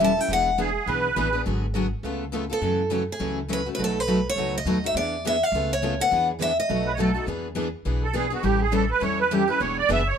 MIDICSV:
0, 0, Header, 1, 6, 480
1, 0, Start_track
1, 0, Tempo, 290980
1, 487, Time_signature, 4, 2, 24, 8
1, 16795, End_track
2, 0, Start_track
2, 0, Title_t, "Steel-string acoustic guitar"
2, 0, Program_c, 0, 25
2, 72, Note_on_c, 0, 81, 91
2, 339, Note_off_c, 0, 81, 0
2, 339, Note_on_c, 0, 79, 92
2, 517, Note_off_c, 0, 79, 0
2, 543, Note_on_c, 0, 78, 89
2, 963, Note_off_c, 0, 78, 0
2, 4168, Note_on_c, 0, 69, 72
2, 4780, Note_off_c, 0, 69, 0
2, 5152, Note_on_c, 0, 68, 75
2, 5568, Note_off_c, 0, 68, 0
2, 5820, Note_on_c, 0, 71, 84
2, 6056, Note_off_c, 0, 71, 0
2, 6182, Note_on_c, 0, 71, 77
2, 6297, Note_off_c, 0, 71, 0
2, 6333, Note_on_c, 0, 69, 90
2, 6598, Note_off_c, 0, 69, 0
2, 6598, Note_on_c, 0, 71, 80
2, 7042, Note_off_c, 0, 71, 0
2, 7085, Note_on_c, 0, 73, 94
2, 7539, Note_off_c, 0, 73, 0
2, 7548, Note_on_c, 0, 75, 100
2, 8012, Note_off_c, 0, 75, 0
2, 8022, Note_on_c, 0, 76, 86
2, 8190, Note_off_c, 0, 76, 0
2, 8197, Note_on_c, 0, 74, 103
2, 8676, Note_off_c, 0, 74, 0
2, 8698, Note_on_c, 0, 76, 94
2, 8963, Note_off_c, 0, 76, 0
2, 8963, Note_on_c, 0, 77, 94
2, 9440, Note_off_c, 0, 77, 0
2, 9452, Note_on_c, 0, 73, 94
2, 9919, Note_on_c, 0, 78, 92
2, 9924, Note_off_c, 0, 73, 0
2, 10352, Note_off_c, 0, 78, 0
2, 10595, Note_on_c, 0, 76, 97
2, 10871, Note_off_c, 0, 76, 0
2, 10881, Note_on_c, 0, 75, 84
2, 11498, Note_off_c, 0, 75, 0
2, 16795, End_track
3, 0, Start_track
3, 0, Title_t, "Accordion"
3, 0, Program_c, 1, 21
3, 978, Note_on_c, 1, 68, 86
3, 1439, Note_on_c, 1, 71, 94
3, 1466, Note_off_c, 1, 68, 0
3, 2336, Note_off_c, 1, 71, 0
3, 11319, Note_on_c, 1, 71, 82
3, 11416, Note_off_c, 1, 71, 0
3, 11429, Note_on_c, 1, 73, 94
3, 11527, Note_on_c, 1, 69, 67
3, 11532, Note_off_c, 1, 73, 0
3, 11975, Note_off_c, 1, 69, 0
3, 13251, Note_on_c, 1, 69, 77
3, 13444, Note_off_c, 1, 69, 0
3, 13449, Note_on_c, 1, 68, 65
3, 13722, Note_off_c, 1, 68, 0
3, 13745, Note_on_c, 1, 66, 72
3, 13918, Note_on_c, 1, 67, 74
3, 13931, Note_off_c, 1, 66, 0
3, 14196, Note_off_c, 1, 67, 0
3, 14210, Note_on_c, 1, 68, 80
3, 14403, Note_off_c, 1, 68, 0
3, 14417, Note_on_c, 1, 69, 75
3, 14686, Note_off_c, 1, 69, 0
3, 14694, Note_on_c, 1, 71, 82
3, 14885, Note_off_c, 1, 71, 0
3, 14893, Note_on_c, 1, 73, 85
3, 15164, Note_off_c, 1, 73, 0
3, 15181, Note_on_c, 1, 71, 82
3, 15369, Note_off_c, 1, 71, 0
3, 15383, Note_on_c, 1, 67, 59
3, 15649, Note_off_c, 1, 67, 0
3, 15666, Note_on_c, 1, 71, 83
3, 15844, Note_on_c, 1, 73, 72
3, 15851, Note_off_c, 1, 71, 0
3, 16119, Note_off_c, 1, 73, 0
3, 16143, Note_on_c, 1, 74, 87
3, 16330, Note_off_c, 1, 74, 0
3, 16370, Note_on_c, 1, 76, 88
3, 16623, Note_off_c, 1, 76, 0
3, 16624, Note_on_c, 1, 73, 81
3, 16795, Note_off_c, 1, 73, 0
3, 16795, End_track
4, 0, Start_track
4, 0, Title_t, "Steel-string acoustic guitar"
4, 0, Program_c, 2, 25
4, 506, Note_on_c, 2, 71, 65
4, 812, Note_off_c, 2, 71, 0
4, 971, Note_on_c, 2, 71, 83
4, 1143, Note_off_c, 2, 71, 0
4, 1462, Note_on_c, 2, 71, 71
4, 1769, Note_off_c, 2, 71, 0
4, 1947, Note_on_c, 2, 71, 92
4, 2110, Note_off_c, 2, 71, 0
4, 3371, Note_on_c, 2, 71, 63
4, 3683, Note_off_c, 2, 71, 0
4, 3870, Note_on_c, 2, 71, 83
4, 4032, Note_off_c, 2, 71, 0
4, 4340, Note_on_c, 2, 54, 65
4, 4355, Note_on_c, 2, 64, 61
4, 4361, Note_on_c, 2, 69, 79
4, 4648, Note_off_c, 2, 54, 0
4, 4655, Note_off_c, 2, 64, 0
4, 4658, Note_off_c, 2, 69, 0
4, 4803, Note_on_c, 2, 54, 75
4, 4819, Note_on_c, 2, 64, 68
4, 4829, Note_on_c, 2, 69, 87
4, 4978, Note_off_c, 2, 54, 0
4, 4987, Note_off_c, 2, 64, 0
4, 4992, Note_off_c, 2, 69, 0
4, 5292, Note_on_c, 2, 54, 62
4, 5293, Note_on_c, 2, 64, 72
4, 5306, Note_on_c, 2, 69, 69
4, 5604, Note_off_c, 2, 54, 0
4, 5605, Note_off_c, 2, 64, 0
4, 5611, Note_off_c, 2, 69, 0
4, 5768, Note_on_c, 2, 54, 74
4, 5785, Note_on_c, 2, 69, 88
4, 5789, Note_on_c, 2, 64, 76
4, 5942, Note_off_c, 2, 54, 0
4, 5950, Note_off_c, 2, 69, 0
4, 5952, Note_off_c, 2, 64, 0
4, 6272, Note_on_c, 2, 71, 71
4, 6575, Note_off_c, 2, 71, 0
4, 6733, Note_on_c, 2, 71, 83
4, 6904, Note_off_c, 2, 71, 0
4, 7233, Note_on_c, 2, 71, 72
4, 7536, Note_off_c, 2, 71, 0
4, 7704, Note_on_c, 2, 71, 83
4, 7870, Note_off_c, 2, 71, 0
4, 8184, Note_on_c, 2, 71, 66
4, 8491, Note_off_c, 2, 71, 0
4, 8696, Note_on_c, 2, 71, 77
4, 8846, Note_off_c, 2, 71, 0
4, 9161, Note_on_c, 2, 71, 62
4, 9460, Note_off_c, 2, 71, 0
4, 9638, Note_on_c, 2, 71, 84
4, 9798, Note_off_c, 2, 71, 0
4, 10100, Note_on_c, 2, 71, 67
4, 10410, Note_off_c, 2, 71, 0
4, 10560, Note_on_c, 2, 71, 93
4, 10739, Note_off_c, 2, 71, 0
4, 11060, Note_on_c, 2, 71, 73
4, 11370, Note_off_c, 2, 71, 0
4, 11517, Note_on_c, 2, 71, 74
4, 11697, Note_off_c, 2, 71, 0
4, 12009, Note_on_c, 2, 71, 74
4, 12324, Note_off_c, 2, 71, 0
4, 12487, Note_on_c, 2, 71, 83
4, 12663, Note_off_c, 2, 71, 0
4, 12973, Note_on_c, 2, 71, 68
4, 13287, Note_off_c, 2, 71, 0
4, 13463, Note_on_c, 2, 71, 89
4, 13631, Note_off_c, 2, 71, 0
4, 15862, Note_on_c, 2, 71, 69
4, 16171, Note_off_c, 2, 71, 0
4, 16332, Note_on_c, 2, 71, 95
4, 16505, Note_off_c, 2, 71, 0
4, 16795, End_track
5, 0, Start_track
5, 0, Title_t, "Steel-string acoustic guitar"
5, 0, Program_c, 3, 25
5, 0, Note_on_c, 3, 52, 83
5, 1, Note_on_c, 3, 55, 82
5, 6, Note_on_c, 3, 61, 90
5, 9, Note_on_c, 3, 69, 81
5, 14, Note_on_c, 3, 64, 88
5, 172, Note_off_c, 3, 52, 0
5, 178, Note_off_c, 3, 55, 0
5, 181, Note_off_c, 3, 61, 0
5, 182, Note_off_c, 3, 69, 0
5, 185, Note_off_c, 3, 64, 0
5, 279, Note_on_c, 3, 69, 56
5, 304, Note_on_c, 3, 64, 56
5, 313, Note_on_c, 3, 61, 46
5, 474, Note_off_c, 3, 69, 0
5, 487, Note_off_c, 3, 64, 0
5, 491, Note_off_c, 3, 61, 0
5, 504, Note_on_c, 3, 52, 58
5, 516, Note_on_c, 3, 59, 62
5, 523, Note_on_c, 3, 62, 65
5, 525, Note_on_c, 3, 68, 66
5, 811, Note_off_c, 3, 52, 0
5, 816, Note_off_c, 3, 59, 0
5, 820, Note_off_c, 3, 62, 0
5, 821, Note_off_c, 3, 68, 0
5, 962, Note_on_c, 3, 62, 81
5, 963, Note_on_c, 3, 52, 78
5, 964, Note_on_c, 3, 59, 82
5, 982, Note_on_c, 3, 68, 92
5, 1139, Note_off_c, 3, 52, 0
5, 1139, Note_off_c, 3, 59, 0
5, 1139, Note_off_c, 3, 62, 0
5, 1148, Note_off_c, 3, 68, 0
5, 1442, Note_on_c, 3, 52, 62
5, 1442, Note_on_c, 3, 59, 68
5, 1459, Note_on_c, 3, 62, 63
5, 1463, Note_on_c, 3, 68, 67
5, 1759, Note_off_c, 3, 52, 0
5, 1759, Note_off_c, 3, 59, 0
5, 1768, Note_off_c, 3, 62, 0
5, 1770, Note_off_c, 3, 68, 0
5, 1917, Note_on_c, 3, 52, 81
5, 1921, Note_on_c, 3, 59, 89
5, 1921, Note_on_c, 3, 62, 80
5, 1935, Note_on_c, 3, 68, 91
5, 2095, Note_off_c, 3, 52, 0
5, 2097, Note_off_c, 3, 59, 0
5, 2098, Note_off_c, 3, 62, 0
5, 2105, Note_off_c, 3, 68, 0
5, 2189, Note_on_c, 3, 68, 59
5, 2217, Note_on_c, 3, 62, 48
5, 2228, Note_on_c, 3, 59, 45
5, 2388, Note_off_c, 3, 68, 0
5, 2397, Note_off_c, 3, 59, 0
5, 2402, Note_off_c, 3, 62, 0
5, 2402, Note_on_c, 3, 50, 61
5, 2407, Note_on_c, 3, 54, 68
5, 2417, Note_on_c, 3, 59, 60
5, 2422, Note_on_c, 3, 66, 66
5, 2429, Note_on_c, 3, 68, 64
5, 2719, Note_off_c, 3, 50, 0
5, 2721, Note_off_c, 3, 54, 0
5, 2726, Note_off_c, 3, 59, 0
5, 2729, Note_off_c, 3, 66, 0
5, 2732, Note_off_c, 3, 68, 0
5, 2883, Note_on_c, 3, 50, 76
5, 2886, Note_on_c, 3, 54, 76
5, 2891, Note_on_c, 3, 59, 78
5, 2898, Note_on_c, 3, 66, 93
5, 2901, Note_on_c, 3, 68, 83
5, 3059, Note_off_c, 3, 50, 0
5, 3060, Note_off_c, 3, 54, 0
5, 3062, Note_off_c, 3, 59, 0
5, 3066, Note_off_c, 3, 66, 0
5, 3068, Note_off_c, 3, 68, 0
5, 3375, Note_on_c, 3, 49, 61
5, 3381, Note_on_c, 3, 57, 56
5, 3386, Note_on_c, 3, 59, 57
5, 3387, Note_on_c, 3, 65, 63
5, 3395, Note_on_c, 3, 69, 74
5, 3685, Note_off_c, 3, 49, 0
5, 3689, Note_off_c, 3, 57, 0
5, 3691, Note_off_c, 3, 59, 0
5, 3691, Note_off_c, 3, 65, 0
5, 3695, Note_off_c, 3, 69, 0
5, 3829, Note_on_c, 3, 49, 85
5, 3835, Note_on_c, 3, 57, 80
5, 3840, Note_on_c, 3, 59, 83
5, 3847, Note_on_c, 3, 65, 80
5, 3848, Note_on_c, 3, 69, 90
5, 4011, Note_off_c, 3, 49, 0
5, 4014, Note_off_c, 3, 57, 0
5, 4017, Note_off_c, 3, 59, 0
5, 4021, Note_off_c, 3, 65, 0
5, 4021, Note_off_c, 3, 69, 0
5, 4117, Note_on_c, 3, 69, 53
5, 4131, Note_on_c, 3, 65, 52
5, 4146, Note_on_c, 3, 59, 48
5, 4311, Note_off_c, 3, 59, 0
5, 4313, Note_off_c, 3, 69, 0
5, 4313, Note_on_c, 3, 49, 49
5, 4313, Note_on_c, 3, 52, 58
5, 4317, Note_off_c, 3, 65, 0
5, 4317, Note_on_c, 3, 57, 61
5, 4324, Note_on_c, 3, 61, 61
5, 4339, Note_on_c, 3, 66, 66
5, 4634, Note_off_c, 3, 49, 0
5, 4635, Note_off_c, 3, 52, 0
5, 4637, Note_off_c, 3, 57, 0
5, 4640, Note_off_c, 3, 61, 0
5, 4648, Note_off_c, 3, 66, 0
5, 4784, Note_on_c, 3, 49, 81
5, 4792, Note_on_c, 3, 52, 83
5, 4799, Note_on_c, 3, 57, 72
5, 4805, Note_on_c, 3, 61, 84
5, 4808, Note_on_c, 3, 66, 83
5, 4969, Note_off_c, 3, 49, 0
5, 4973, Note_off_c, 3, 52, 0
5, 4977, Note_off_c, 3, 57, 0
5, 4979, Note_off_c, 3, 61, 0
5, 4981, Note_off_c, 3, 66, 0
5, 5269, Note_on_c, 3, 49, 59
5, 5273, Note_on_c, 3, 52, 64
5, 5277, Note_on_c, 3, 57, 64
5, 5280, Note_on_c, 3, 66, 71
5, 5288, Note_on_c, 3, 61, 65
5, 5592, Note_off_c, 3, 49, 0
5, 5594, Note_off_c, 3, 52, 0
5, 5597, Note_off_c, 3, 57, 0
5, 5598, Note_off_c, 3, 66, 0
5, 5602, Note_off_c, 3, 61, 0
5, 5748, Note_on_c, 3, 49, 74
5, 5757, Note_on_c, 3, 52, 76
5, 5762, Note_on_c, 3, 57, 84
5, 5769, Note_on_c, 3, 66, 84
5, 5771, Note_on_c, 3, 61, 92
5, 5931, Note_off_c, 3, 49, 0
5, 5936, Note_off_c, 3, 52, 0
5, 5938, Note_off_c, 3, 57, 0
5, 5942, Note_off_c, 3, 66, 0
5, 5943, Note_off_c, 3, 61, 0
5, 6038, Note_on_c, 3, 66, 54
5, 6054, Note_on_c, 3, 61, 49
5, 6072, Note_on_c, 3, 57, 44
5, 6234, Note_off_c, 3, 57, 0
5, 6234, Note_off_c, 3, 66, 0
5, 6241, Note_off_c, 3, 61, 0
5, 6242, Note_on_c, 3, 47, 57
5, 6252, Note_on_c, 3, 54, 57
5, 6254, Note_on_c, 3, 57, 61
5, 6257, Note_on_c, 3, 63, 65
5, 6264, Note_on_c, 3, 66, 57
5, 6560, Note_off_c, 3, 47, 0
5, 6565, Note_off_c, 3, 54, 0
5, 6565, Note_off_c, 3, 57, 0
5, 6567, Note_off_c, 3, 63, 0
5, 6571, Note_off_c, 3, 66, 0
5, 6724, Note_on_c, 3, 47, 89
5, 6734, Note_on_c, 3, 54, 76
5, 6734, Note_on_c, 3, 57, 91
5, 6736, Note_on_c, 3, 63, 86
5, 6753, Note_on_c, 3, 66, 79
5, 6900, Note_off_c, 3, 47, 0
5, 6905, Note_off_c, 3, 54, 0
5, 6905, Note_off_c, 3, 57, 0
5, 6906, Note_off_c, 3, 63, 0
5, 6914, Note_off_c, 3, 66, 0
5, 7217, Note_on_c, 3, 47, 56
5, 7222, Note_on_c, 3, 54, 61
5, 7230, Note_on_c, 3, 63, 67
5, 7235, Note_on_c, 3, 57, 65
5, 7245, Note_on_c, 3, 66, 62
5, 7527, Note_off_c, 3, 47, 0
5, 7530, Note_off_c, 3, 54, 0
5, 7534, Note_off_c, 3, 63, 0
5, 7536, Note_off_c, 3, 57, 0
5, 7541, Note_off_c, 3, 66, 0
5, 7692, Note_on_c, 3, 47, 76
5, 7697, Note_on_c, 3, 54, 85
5, 7702, Note_on_c, 3, 57, 92
5, 7706, Note_on_c, 3, 66, 88
5, 7709, Note_on_c, 3, 63, 81
5, 7864, Note_off_c, 3, 47, 0
5, 7867, Note_off_c, 3, 54, 0
5, 7869, Note_off_c, 3, 57, 0
5, 7871, Note_off_c, 3, 66, 0
5, 7872, Note_off_c, 3, 63, 0
5, 7982, Note_on_c, 3, 66, 58
5, 7992, Note_on_c, 3, 63, 56
5, 8006, Note_on_c, 3, 57, 52
5, 8166, Note_off_c, 3, 66, 0
5, 8171, Note_off_c, 3, 63, 0
5, 8178, Note_off_c, 3, 57, 0
5, 8183, Note_on_c, 3, 52, 54
5, 8192, Note_on_c, 3, 59, 65
5, 8197, Note_on_c, 3, 62, 70
5, 8208, Note_on_c, 3, 68, 60
5, 8491, Note_off_c, 3, 52, 0
5, 8495, Note_off_c, 3, 59, 0
5, 8497, Note_off_c, 3, 62, 0
5, 8503, Note_off_c, 3, 68, 0
5, 8656, Note_on_c, 3, 52, 81
5, 8661, Note_on_c, 3, 62, 88
5, 8664, Note_on_c, 3, 59, 82
5, 8669, Note_on_c, 3, 68, 88
5, 8826, Note_off_c, 3, 52, 0
5, 8829, Note_off_c, 3, 62, 0
5, 8830, Note_off_c, 3, 59, 0
5, 8833, Note_off_c, 3, 68, 0
5, 9146, Note_on_c, 3, 57, 63
5, 9148, Note_on_c, 3, 49, 57
5, 9155, Note_on_c, 3, 59, 63
5, 9160, Note_on_c, 3, 65, 70
5, 9166, Note_on_c, 3, 69, 59
5, 9452, Note_off_c, 3, 57, 0
5, 9454, Note_off_c, 3, 49, 0
5, 9457, Note_off_c, 3, 59, 0
5, 9459, Note_off_c, 3, 65, 0
5, 9463, Note_off_c, 3, 69, 0
5, 9601, Note_on_c, 3, 49, 79
5, 9614, Note_on_c, 3, 57, 71
5, 9615, Note_on_c, 3, 59, 85
5, 9625, Note_on_c, 3, 65, 95
5, 9628, Note_on_c, 3, 69, 82
5, 9779, Note_off_c, 3, 49, 0
5, 9786, Note_off_c, 3, 57, 0
5, 9786, Note_off_c, 3, 59, 0
5, 9791, Note_off_c, 3, 65, 0
5, 9793, Note_off_c, 3, 69, 0
5, 9903, Note_on_c, 3, 69, 58
5, 9915, Note_on_c, 3, 65, 49
5, 9936, Note_on_c, 3, 59, 47
5, 10065, Note_off_c, 3, 59, 0
5, 10082, Note_on_c, 3, 52, 60
5, 10085, Note_on_c, 3, 59, 52
5, 10087, Note_off_c, 3, 69, 0
5, 10093, Note_off_c, 3, 65, 0
5, 10100, Note_on_c, 3, 62, 61
5, 10105, Note_on_c, 3, 68, 61
5, 10401, Note_off_c, 3, 52, 0
5, 10402, Note_off_c, 3, 59, 0
5, 10410, Note_off_c, 3, 62, 0
5, 10412, Note_off_c, 3, 68, 0
5, 10567, Note_on_c, 3, 52, 85
5, 10579, Note_on_c, 3, 59, 84
5, 10580, Note_on_c, 3, 62, 82
5, 10590, Note_on_c, 3, 68, 85
5, 10743, Note_off_c, 3, 52, 0
5, 10748, Note_off_c, 3, 59, 0
5, 10749, Note_off_c, 3, 62, 0
5, 10754, Note_off_c, 3, 68, 0
5, 11045, Note_on_c, 3, 47, 64
5, 11052, Note_on_c, 3, 57, 58
5, 11056, Note_on_c, 3, 54, 52
5, 11068, Note_on_c, 3, 63, 65
5, 11069, Note_on_c, 3, 66, 58
5, 11362, Note_off_c, 3, 47, 0
5, 11366, Note_off_c, 3, 57, 0
5, 11368, Note_off_c, 3, 54, 0
5, 11374, Note_off_c, 3, 63, 0
5, 11374, Note_off_c, 3, 66, 0
5, 11530, Note_on_c, 3, 47, 87
5, 11546, Note_on_c, 3, 54, 84
5, 11547, Note_on_c, 3, 63, 86
5, 11551, Note_on_c, 3, 57, 91
5, 11553, Note_on_c, 3, 66, 90
5, 11704, Note_off_c, 3, 47, 0
5, 11712, Note_off_c, 3, 54, 0
5, 11713, Note_off_c, 3, 63, 0
5, 11714, Note_off_c, 3, 57, 0
5, 11715, Note_off_c, 3, 66, 0
5, 11785, Note_on_c, 3, 66, 53
5, 11807, Note_on_c, 3, 63, 57
5, 11819, Note_on_c, 3, 57, 48
5, 11988, Note_off_c, 3, 66, 0
5, 11999, Note_off_c, 3, 57, 0
5, 12000, Note_off_c, 3, 63, 0
5, 12005, Note_on_c, 3, 59, 65
5, 12006, Note_on_c, 3, 52, 60
5, 12017, Note_on_c, 3, 68, 65
5, 12020, Note_on_c, 3, 62, 63
5, 12323, Note_off_c, 3, 52, 0
5, 12323, Note_off_c, 3, 59, 0
5, 12329, Note_off_c, 3, 68, 0
5, 12330, Note_off_c, 3, 62, 0
5, 12454, Note_on_c, 3, 52, 77
5, 12458, Note_on_c, 3, 59, 81
5, 12467, Note_on_c, 3, 62, 87
5, 12470, Note_on_c, 3, 68, 87
5, 12646, Note_off_c, 3, 52, 0
5, 12648, Note_off_c, 3, 59, 0
5, 12653, Note_off_c, 3, 62, 0
5, 12654, Note_off_c, 3, 68, 0
5, 12950, Note_on_c, 3, 52, 67
5, 12957, Note_on_c, 3, 59, 58
5, 12960, Note_on_c, 3, 62, 67
5, 12972, Note_on_c, 3, 68, 63
5, 13275, Note_off_c, 3, 52, 0
5, 13279, Note_off_c, 3, 59, 0
5, 13280, Note_off_c, 3, 62, 0
5, 13286, Note_off_c, 3, 68, 0
5, 13418, Note_on_c, 3, 52, 88
5, 13425, Note_on_c, 3, 59, 77
5, 13433, Note_on_c, 3, 68, 90
5, 13436, Note_on_c, 3, 62, 79
5, 13608, Note_off_c, 3, 52, 0
5, 13612, Note_off_c, 3, 59, 0
5, 13616, Note_off_c, 3, 68, 0
5, 13617, Note_off_c, 3, 62, 0
5, 13697, Note_on_c, 3, 68, 60
5, 13719, Note_on_c, 3, 62, 54
5, 13734, Note_on_c, 3, 59, 48
5, 13902, Note_on_c, 3, 52, 53
5, 13904, Note_off_c, 3, 68, 0
5, 13905, Note_on_c, 3, 55, 63
5, 13908, Note_off_c, 3, 59, 0
5, 13910, Note_off_c, 3, 62, 0
5, 13915, Note_on_c, 3, 61, 58
5, 13917, Note_on_c, 3, 64, 72
5, 13928, Note_on_c, 3, 69, 62
5, 14231, Note_off_c, 3, 52, 0
5, 14233, Note_off_c, 3, 55, 0
5, 14238, Note_off_c, 3, 61, 0
5, 14239, Note_off_c, 3, 64, 0
5, 14244, Note_off_c, 3, 69, 0
5, 14382, Note_on_c, 3, 52, 87
5, 14386, Note_on_c, 3, 55, 88
5, 14393, Note_on_c, 3, 64, 79
5, 14397, Note_on_c, 3, 61, 91
5, 14401, Note_on_c, 3, 69, 86
5, 14570, Note_off_c, 3, 52, 0
5, 14572, Note_off_c, 3, 55, 0
5, 14576, Note_off_c, 3, 64, 0
5, 14577, Note_off_c, 3, 61, 0
5, 14580, Note_off_c, 3, 69, 0
5, 14849, Note_on_c, 3, 52, 57
5, 14864, Note_on_c, 3, 55, 61
5, 14866, Note_on_c, 3, 61, 65
5, 14868, Note_on_c, 3, 64, 62
5, 14870, Note_on_c, 3, 69, 60
5, 15185, Note_off_c, 3, 52, 0
5, 15192, Note_off_c, 3, 55, 0
5, 15193, Note_off_c, 3, 61, 0
5, 15194, Note_off_c, 3, 64, 0
5, 15195, Note_off_c, 3, 69, 0
5, 15359, Note_on_c, 3, 55, 89
5, 15360, Note_on_c, 3, 52, 90
5, 15366, Note_on_c, 3, 61, 95
5, 15375, Note_on_c, 3, 69, 88
5, 15379, Note_on_c, 3, 64, 78
5, 15539, Note_off_c, 3, 52, 0
5, 15539, Note_off_c, 3, 55, 0
5, 15542, Note_off_c, 3, 61, 0
5, 15546, Note_off_c, 3, 69, 0
5, 15549, Note_off_c, 3, 64, 0
5, 15633, Note_on_c, 3, 69, 60
5, 15649, Note_on_c, 3, 64, 54
5, 15672, Note_on_c, 3, 61, 49
5, 15832, Note_off_c, 3, 69, 0
5, 15832, Note_on_c, 3, 52, 54
5, 15837, Note_off_c, 3, 61, 0
5, 15838, Note_off_c, 3, 64, 0
5, 15843, Note_on_c, 3, 59, 65
5, 15844, Note_on_c, 3, 62, 61
5, 15853, Note_on_c, 3, 68, 69
5, 16156, Note_off_c, 3, 52, 0
5, 16162, Note_off_c, 3, 59, 0
5, 16162, Note_off_c, 3, 62, 0
5, 16166, Note_off_c, 3, 68, 0
5, 16308, Note_on_c, 3, 52, 83
5, 16326, Note_on_c, 3, 59, 100
5, 16326, Note_on_c, 3, 62, 96
5, 16339, Note_on_c, 3, 68, 97
5, 16493, Note_off_c, 3, 52, 0
5, 16502, Note_off_c, 3, 59, 0
5, 16502, Note_off_c, 3, 62, 0
5, 16509, Note_off_c, 3, 68, 0
5, 16795, End_track
6, 0, Start_track
6, 0, Title_t, "Upright bass"
6, 0, Program_c, 4, 32
6, 0, Note_on_c, 4, 28, 73
6, 284, Note_off_c, 4, 28, 0
6, 471, Note_on_c, 4, 28, 84
6, 1245, Note_off_c, 4, 28, 0
6, 1424, Note_on_c, 4, 35, 70
6, 1841, Note_off_c, 4, 35, 0
6, 1919, Note_on_c, 4, 33, 76
6, 2329, Note_off_c, 4, 33, 0
6, 2409, Note_on_c, 4, 32, 80
6, 3175, Note_off_c, 4, 32, 0
6, 3351, Note_on_c, 4, 37, 80
6, 4125, Note_off_c, 4, 37, 0
6, 4311, Note_on_c, 4, 42, 72
6, 5085, Note_off_c, 4, 42, 0
6, 5278, Note_on_c, 4, 37, 73
6, 6049, Note_off_c, 4, 37, 0
6, 6247, Note_on_c, 4, 35, 80
6, 7015, Note_off_c, 4, 35, 0
6, 7192, Note_on_c, 4, 37, 77
6, 7606, Note_off_c, 4, 37, 0
6, 7672, Note_on_c, 4, 39, 71
6, 8086, Note_off_c, 4, 39, 0
6, 8161, Note_on_c, 4, 40, 85
6, 8932, Note_off_c, 4, 40, 0
6, 9105, Note_on_c, 4, 37, 84
6, 9883, Note_off_c, 4, 37, 0
6, 10093, Note_on_c, 4, 40, 72
6, 10860, Note_off_c, 4, 40, 0
6, 11055, Note_on_c, 4, 35, 79
6, 11821, Note_off_c, 4, 35, 0
6, 11991, Note_on_c, 4, 40, 82
6, 12766, Note_off_c, 4, 40, 0
6, 12960, Note_on_c, 4, 35, 76
6, 13732, Note_off_c, 4, 35, 0
6, 13918, Note_on_c, 4, 33, 83
6, 14691, Note_off_c, 4, 33, 0
6, 14868, Note_on_c, 4, 40, 78
6, 15645, Note_off_c, 4, 40, 0
6, 15841, Note_on_c, 4, 28, 82
6, 16228, Note_off_c, 4, 28, 0
6, 16312, Note_on_c, 4, 30, 92
6, 16727, Note_off_c, 4, 30, 0
6, 16795, End_track
0, 0, End_of_file